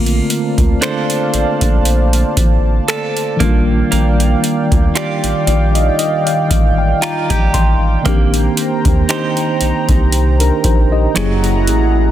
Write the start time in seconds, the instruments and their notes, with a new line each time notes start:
Already playing: analog synth bass A#1, tine electric piano D3 A3 A#3 C4 F4, clean electric guitar A#3, analog synth pad C5 D5 F5 A5
0.06 closed hi-hat
0.30 closed hi-hat
0.58 analog synth bass D2, kick, closed hi-hat
0.81 clean electric guitar D4 A4 C5, finger snap, closed hi-hat
1.10 closed hi-hat
1.34 analog synth bass A#1, closed hi-hat
1.61 analog synth bass A#1, kick, closed hi-hat
1.85 closed hi-hat
2.13 closed hi-hat
2.37 analog synth bass A1, kick, closed hi-hat
2.88 clean electric guitar A4, finger snap, closed hi-hat
3.17 closed hi-hat
3.37 analog synth bass A#1, tine electric piano D#3 F3 A#3, analog synth pad D#3 D5 F5 G5, clean electric guitar A#3, kick, closed hi-hat
3.42 tine electric piano G3 D4 F4
3.92 analog synth bass A#1, clean electric guitar A#3, closed hi-hat
4.20 closed hi-hat
4.44 closed hi-hat
4.72 analog synth bass D2, kick, closed hi-hat
4.95 clean electric guitar F4 G4 D5, finger snap, closed hi-hat
5.24 analog synth bass A#1, closed hi-hat
5.47 analog synth bass A#1, tine electric piano D5, closed hi-hat
5.75 tine electric piano D#5, closed hi-hat
5.99 tine electric piano D#5, closed hi-hat
6.27 tine electric piano F5, closed hi-hat
6.51 analog synth bass A1, kick, closed hi-hat
6.78 tine electric piano G5
7.02 clean electric guitar F4, tine electric piano A#5, finger snap, closed hi-hat
7.30 analog synth bass A#1, clean electric guitar G4, kick, closed hi-hat
7.54 analog synth bass A1, tine electric piano C6, kick, closed hi-hat
8.02 tine electric piano D3 A#3 C4, clean electric guitar A#3, closed hi-hat
8.06 analog synth bass A#1, tine electric piano D#3 D4 G4, analog synth pad C5 A#5, kick
8.34 closed hi-hat
8.57 closed hi-hat
8.85 analog synth bass D#2, kick, closed hi-hat
9.09 clean electric guitar D#4 G4 C5, finger snap, closed hi-hat
9.37 closed hi-hat
9.61 analog synth bass C2, closed hi-hat
9.89 analog synth bass C2, kick, closed hi-hat
10.12 closed hi-hat
10.40 tine electric piano D4 A#4, closed hi-hat
10.64 analog synth bass A#1, tine electric piano D#4 C5, kick, closed hi-hat
10.92 tine electric piano G4 D#5
11.14 analog synth bass F#1, tine electric piano F#3 A#3 C#4 E4 G#4, clean electric guitar F#3, analog synth pad E4 G#4 F#5 A#5, finger snap, closed hi-hat
11.44 closed hi-hat
11.67 analog synth bass A1, closed hi-hat